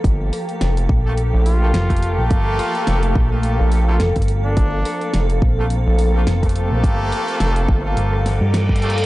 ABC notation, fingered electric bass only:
X:1
M:4/4
L:1/16
Q:"Swing 16ths" 1/4=106
K:Gm
V:1 name="Fingered electric bass" clef=bass
z6 B,,,3 z3 F,,,3 B,,, | G,,,2 z4 B,,,3 z3 F,,, G,,,3 | z6 B,,,3 z3 F,,,3 B,,, | z8 G,,,3 G,,4- G,, |]